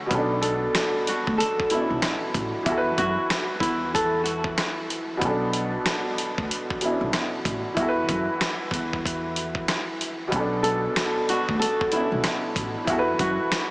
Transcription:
Already playing: D3 A3 C#4 F#4
0.06 B2 B3
0.11 B1 C#4 A4, kick, closed hi-hat
0.18 D4
0.42 A4, closed hi-hat
0.75 cross-stick, snare, closed hi-hat
1.07 F#4, closed hi-hat
1.27 D2, kick
1.38 A4, closed hi-hat
1.60 kick
1.70 B2 B3 C#4 E4, closed hi-hat
1.75 E4
1.80 D4
1.90 B1
2.02 cross-stick, snare, closed hi-hat
2.34 A1, kick, closed hi-hat
2.63 E2 E3 E4, kick, closed hi-hat
2.68 F#4 A4
2.78 B4
2.98 F#2 F#4, kick, closed hi-hat
3.30 cross-stick, snare, closed hi-hat
3.60 E2 E4, kick, closed hi-hat
3.94 A4, kick, closed hi-hat
4.24 F#4, closed hi-hat
4.44 kick
4.58 cross-stick, snare, closed hi-hat
4.90 closed hi-hat
5.17 B2 B3
5.21 B1 C#4 A4, kick, closed hi-hat
5.29 D4
5.53 closed hi-hat
5.86 cross-stick, snare, closed hi-hat
6.18 closed hi-hat
6.38 D2, kick
6.51 closed hi-hat
6.70 kick
6.81 B2 B3 C#4, closed hi-hat
6.85 E4
6.90 D4
7.01 B1
7.13 cross-stick, snare, closed hi-hat
7.45 A1, kick, closed hi-hat
7.74 E2 E3 E4, kick, closed hi-hat
7.79 F#4 A4
7.88 B4
8.09 F#2, kick, closed hi-hat
8.41 cross-stick, snare, closed hi-hat
8.71 E2, kick, closed hi-hat
8.93 kick
9.06 kick, closed hi-hat
9.36 closed hi-hat
9.55 kick
9.68 cross-stick, snare, closed hi-hat
10.01 closed hi-hat
10.28 B2 B3
10.32 B1 C#4 A4, kick, closed hi-hat
10.40 D4
10.63 A4, closed hi-hat
10.96 cross-stick, snare, closed hi-hat
11.29 F#4, closed hi-hat
11.49 D2, kick
11.59 A4, closed hi-hat
11.81 kick
11.92 B2 B3 C#4 E4, closed hi-hat
11.96 E4
12.01 D4
12.12 B1
12.24 cross-stick, snare, closed hi-hat
12.56 A1, kick, closed hi-hat
12.84 E2 E3 E4, kick, closed hi-hat
12.90 F#4 A4
12.99 B4
13.19 F#2 F#4, kick, closed hi-hat
13.52 cross-stick, snare, closed hi-hat

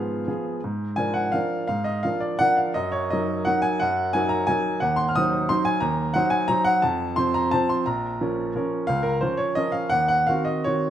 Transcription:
Already playing: G#2 F3 B3 G#4 F5
0.27 F3 B3 G#4
0.64 G#2
0.96 F3 D4 A#4 G#5
1.14 F#5
1.32 F3 D4 A#4 F5
1.68 G#2 F5
1.84 D#5
2.03 F3 D4 A#4 F5
2.20 D5
2.39 F3 D4 A#4 F#5
2.57 F5
2.74 F#2 D#5
2.92 C#5
3.10 F#3 D#4 A#4 D#5
3.45 F#3 D#4 A#4 F#5
3.62 G#5
3.80 F#2 F#5
4.13 F#3 D#4 A#4 G#5
4.29 A#5
4.47 F#3 D#4 A#4 G#5
4.80 D#2 F#5
4.96 C6
5.09 F6
5.16 F#3 D#4 C5 D#6
5.49 F#3 D#4 C5 C6
5.65 G#5
5.80 D#2 A#5
6.14 F#3 D#4 C5 F#5
6.30 G#5
6.48 F#3 D#4 C5 A#5
6.64 F#5
6.82 F2 A5
7.16 F3 C4 C5 C6
7.34 A#5
7.51 F3 C4 C5 A5
7.69 C6
7.86 A#1 A#5
8.21 F3 C#4 A#4
8.56 F3 C#4 A#4
8.87 C#2 F5
9.03 A#4
9.21 F3 C#4 A#4 C5
9.37 C#5
9.55 F3 C#4 A#4 D#5
9.72 F5
9.90 D#2 F#5
10.08 F#5
10.27 D#3 C4 F#4 F5
10.45 D#5
10.64 D#3 C4 F#4 C#5

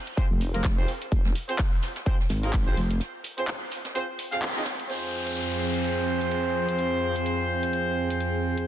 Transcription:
0.07 closed hi-hat
0.17 C4 F4 G#4 C5, kick, closed hi-hat
0.31 F1
0.40 closed hi-hat, open hi-hat
0.54 A#3 C4 F4 G#4 A#4, closed hi-hat
0.64 F1, kick, snare, clap, closed hi-hat
0.78 C4 F4 G#4 C5
0.88 closed hi-hat, open hi-hat
1.02 closed hi-hat
1.12 F1, kick, closed hi-hat
1.25 snare
1.35 closed hi-hat, open hi-hat
1.49 C4 F4 G#4 C5, closed hi-hat
1.58 kick, snare, clap, closed hi-hat
1.72 closed hi-hat
1.82 snare, closed hi-hat, open hi-hat
1.96 snare, closed hi-hat
2.06 C4 F4 G#4 C5, kick, closed hi-hat
2.20 snare
2.29 G#1, snare, closed hi-hat, open hi-hat
2.43 A#3 C4 F4 G#4 A#4, closed hi-hat
2.53 kick, snare, clap, closed hi-hat
2.67 C4 F4 G#4 C5
2.77 F1, closed hi-hat, open hi-hat
2.91 closed hi-hat
3.01 closed hi-hat
3.24 closed hi-hat, open hi-hat
3.38 C4 F4 G#4 C5, closed hi-hat
3.48 snare, clap, closed hi-hat
3.72 closed hi-hat, open hi-hat
3.85 snare, closed hi-hat
3.95 C4 F4 G#4 C5, closed hi-hat
4.19 closed hi-hat, open hi-hat
4.32 C4 F4 G#4 F5, snare, closed hi-hat
4.42 clap, closed hi-hat
4.56 C4 D#4 F4 G#4 D#5, closed hi-hat
4.65 snare, closed hi-hat, open hi-hat
4.80 closed hi-hat
4.90 F2 F3 C4 F4 G#4 C5, closed hi-hat, downlifter
5.27 closed hi-hat
5.37 closed hi-hat
5.74 closed hi-hat
5.84 closed hi-hat
6.21 closed hi-hat
6.31 closed hi-hat
6.69 closed hi-hat
6.79 closed hi-hat
7.16 closed hi-hat
7.26 closed hi-hat
7.63 closed hi-hat
7.73 closed hi-hat
8.10 closed hi-hat
8.20 closed hi-hat
8.58 closed hi-hat

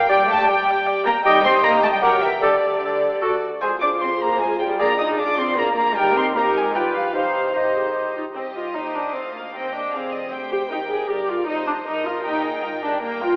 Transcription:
Already playing: G5
0.09 A#1 G3 D4 G4 D5 G5
0.28 A3 G5 A5
0.47 G3 D5 G5
0.68 G5
0.86 D5
1.05 A#3 G5 A#5
1.24 C2 C3 G3 D#4 G4 D#5 G5
1.44 C4 C6
1.63 A#3 A#5
1.83 A3 A5
1.92 G3 G5
2.01 C#2 F#3 G4 A#4 F#5 G5
2.22 E3 E5
2.41 D2 D3 G4 A4 D5
3.22 D2 F#4 A4 D5
3.60 F2 G#3 F4 G#4 C5 G#5
3.80 D4 D6
4.00 C4 C6
4.20 A#3 A#5
4.40 G#3 G#5
4.60 G3 G5
4.79 A#1 A#3 D4 G#4 D5 A#5
4.98 D#4 D#6
5.18 D4 D6
5.38 C4 C6
5.57 A#3 A#5
5.76 A#3 A#5
5.95 D#2 G3 D#4 G4 A#4 G5
6.16 C4 C6
6.35 F2 A#3 D#4 G4 A#4 A#5
6.55 G#3 G#5
6.73 G2 G3 F4 G4 B4 G5
6.94 F3 F5
7.14 C2 F3 D#4 G4 C5 F5
7.54 D#3 D#4 G4 C5 D#5
7.76 G#4
7.96 G4
8.15 D#4 F4
8.35 C2 C4 G4 D#5
8.55 F4
8.74 D#2 D#4 G4 C5
8.94 D4
9.14 D2 C4 F4 F5
9.34 A#3
9.53 D#2 C4 G4 D#5 G5
9.73 D4
9.92 F1 F2 C4 G#4 D5 F5
10.11 D#5
10.31 D2 G4 C5 G5
10.51 G4
10.69 D#2 D#4 G4 A#4
10.89 G#4
11.08 G1 G2 G4 A#4 D5
11.28 F4
11.46 F1 F2 D#4 C5 D#5
11.66 D4
11.85 G1 G2 D#4 A#4 D#5
12.05 F4
12.24 A#1 A#2 D#4 G4 G5
12.45 G#4
12.63 G#1 G#2 F4 A#4
12.83 D4 G4
13.00 G1 G2 A#3 A#4 G5
13.21 F4

